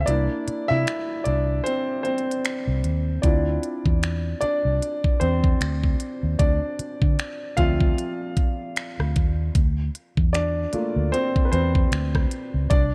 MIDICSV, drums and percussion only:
0, 0, Header, 1, 2, 480
1, 0, Start_track
1, 0, Key_signature, -1, "minor"
1, 0, Tempo, 789474
1, 46, Time_signature, 4, 2, 24, 8
1, 7871, End_track
2, 0, Start_track
2, 0, Title_t, "Drums"
2, 46, Note_on_c, 9, 42, 76
2, 107, Note_off_c, 9, 42, 0
2, 289, Note_on_c, 9, 42, 65
2, 350, Note_off_c, 9, 42, 0
2, 530, Note_on_c, 9, 42, 68
2, 534, Note_on_c, 9, 26, 101
2, 591, Note_off_c, 9, 42, 0
2, 595, Note_off_c, 9, 26, 0
2, 763, Note_on_c, 9, 42, 65
2, 824, Note_off_c, 9, 42, 0
2, 1011, Note_on_c, 9, 42, 69
2, 1072, Note_off_c, 9, 42, 0
2, 1246, Note_on_c, 9, 42, 35
2, 1307, Note_off_c, 9, 42, 0
2, 1327, Note_on_c, 9, 42, 43
2, 1388, Note_off_c, 9, 42, 0
2, 1408, Note_on_c, 9, 42, 61
2, 1469, Note_off_c, 9, 42, 0
2, 1489, Note_on_c, 9, 42, 53
2, 1494, Note_on_c, 9, 26, 112
2, 1549, Note_off_c, 9, 42, 0
2, 1555, Note_off_c, 9, 26, 0
2, 1728, Note_on_c, 9, 42, 64
2, 1789, Note_off_c, 9, 42, 0
2, 1966, Note_on_c, 9, 42, 72
2, 1967, Note_on_c, 9, 36, 113
2, 2026, Note_off_c, 9, 42, 0
2, 2028, Note_off_c, 9, 36, 0
2, 2209, Note_on_c, 9, 42, 62
2, 2270, Note_off_c, 9, 42, 0
2, 2346, Note_on_c, 9, 36, 92
2, 2406, Note_off_c, 9, 36, 0
2, 2451, Note_on_c, 9, 42, 72
2, 2455, Note_on_c, 9, 26, 101
2, 2512, Note_off_c, 9, 42, 0
2, 2516, Note_off_c, 9, 26, 0
2, 2685, Note_on_c, 9, 42, 66
2, 2746, Note_off_c, 9, 42, 0
2, 2934, Note_on_c, 9, 42, 65
2, 2995, Note_off_c, 9, 42, 0
2, 3067, Note_on_c, 9, 36, 90
2, 3128, Note_off_c, 9, 36, 0
2, 3169, Note_on_c, 9, 42, 57
2, 3229, Note_off_c, 9, 42, 0
2, 3306, Note_on_c, 9, 36, 91
2, 3367, Note_off_c, 9, 36, 0
2, 3409, Note_on_c, 9, 42, 55
2, 3415, Note_on_c, 9, 26, 110
2, 3470, Note_off_c, 9, 42, 0
2, 3476, Note_off_c, 9, 26, 0
2, 3548, Note_on_c, 9, 36, 89
2, 3608, Note_off_c, 9, 36, 0
2, 3647, Note_on_c, 9, 42, 66
2, 3708, Note_off_c, 9, 42, 0
2, 3886, Note_on_c, 9, 42, 71
2, 3887, Note_on_c, 9, 36, 116
2, 3947, Note_off_c, 9, 42, 0
2, 3948, Note_off_c, 9, 36, 0
2, 4130, Note_on_c, 9, 42, 66
2, 4190, Note_off_c, 9, 42, 0
2, 4266, Note_on_c, 9, 36, 98
2, 4327, Note_off_c, 9, 36, 0
2, 4370, Note_on_c, 9, 42, 68
2, 4374, Note_on_c, 9, 26, 104
2, 4431, Note_off_c, 9, 42, 0
2, 4435, Note_off_c, 9, 26, 0
2, 4604, Note_on_c, 9, 42, 66
2, 4607, Note_on_c, 9, 36, 83
2, 4665, Note_off_c, 9, 42, 0
2, 4667, Note_off_c, 9, 36, 0
2, 4744, Note_on_c, 9, 36, 97
2, 4805, Note_off_c, 9, 36, 0
2, 4853, Note_on_c, 9, 42, 69
2, 4914, Note_off_c, 9, 42, 0
2, 5088, Note_on_c, 9, 36, 89
2, 5088, Note_on_c, 9, 42, 58
2, 5148, Note_off_c, 9, 42, 0
2, 5149, Note_off_c, 9, 36, 0
2, 5328, Note_on_c, 9, 42, 56
2, 5334, Note_on_c, 9, 26, 116
2, 5389, Note_off_c, 9, 42, 0
2, 5394, Note_off_c, 9, 26, 0
2, 5471, Note_on_c, 9, 37, 88
2, 5531, Note_off_c, 9, 37, 0
2, 5567, Note_on_c, 9, 42, 63
2, 5569, Note_on_c, 9, 36, 97
2, 5628, Note_off_c, 9, 42, 0
2, 5630, Note_off_c, 9, 36, 0
2, 5806, Note_on_c, 9, 42, 73
2, 5807, Note_on_c, 9, 36, 116
2, 5867, Note_off_c, 9, 36, 0
2, 5867, Note_off_c, 9, 42, 0
2, 6050, Note_on_c, 9, 42, 65
2, 6110, Note_off_c, 9, 42, 0
2, 6185, Note_on_c, 9, 36, 94
2, 6246, Note_off_c, 9, 36, 0
2, 6289, Note_on_c, 9, 42, 71
2, 6293, Note_on_c, 9, 26, 100
2, 6350, Note_off_c, 9, 42, 0
2, 6354, Note_off_c, 9, 26, 0
2, 6523, Note_on_c, 9, 42, 68
2, 6584, Note_off_c, 9, 42, 0
2, 6772, Note_on_c, 9, 42, 71
2, 6832, Note_off_c, 9, 42, 0
2, 6906, Note_on_c, 9, 36, 91
2, 6967, Note_off_c, 9, 36, 0
2, 7008, Note_on_c, 9, 42, 54
2, 7069, Note_off_c, 9, 42, 0
2, 7145, Note_on_c, 9, 36, 94
2, 7206, Note_off_c, 9, 36, 0
2, 7247, Note_on_c, 9, 42, 55
2, 7253, Note_on_c, 9, 26, 112
2, 7308, Note_off_c, 9, 42, 0
2, 7314, Note_off_c, 9, 26, 0
2, 7386, Note_on_c, 9, 36, 87
2, 7390, Note_on_c, 9, 37, 89
2, 7447, Note_off_c, 9, 36, 0
2, 7450, Note_off_c, 9, 37, 0
2, 7487, Note_on_c, 9, 42, 62
2, 7547, Note_off_c, 9, 42, 0
2, 7725, Note_on_c, 9, 42, 74
2, 7726, Note_on_c, 9, 36, 115
2, 7785, Note_off_c, 9, 42, 0
2, 7787, Note_off_c, 9, 36, 0
2, 7871, End_track
0, 0, End_of_file